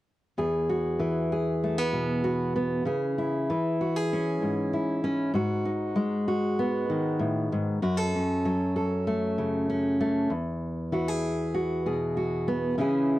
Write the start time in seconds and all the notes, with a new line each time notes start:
0.38 E2 G#4
0.69 F#4
0.99 E3
1.32 G#4
1.64 A3
1.78 B3
1.93 B2
2.24 F#4
2.55 B3
2.85 C#3 G#4
3.18 E4
3.50 E3
3.81 F#4
3.96 G#4
4.13 C#4
4.42 G#2
4.73 E4
5.04 C#4
5.34 G#2 F#4
5.65 D#4
5.96 G#3
6.28 F#4
6.59 B3
6.90 D#3
7.20 A2
7.53 G#2
7.83 F#2 F#4
7.97 A4
8.15 C#4
8.45 F#3
8.76 A4
9.07 A3
9.38 C#3
9.69 C#4
10.00 A3
10.30 E2
10.92 E3 F#4
11.08 G#4
11.54 F#4
11.86 B2 G#4
12.17 F#4
12.48 B3
12.78 C#3 E3 C#4 E4 G#4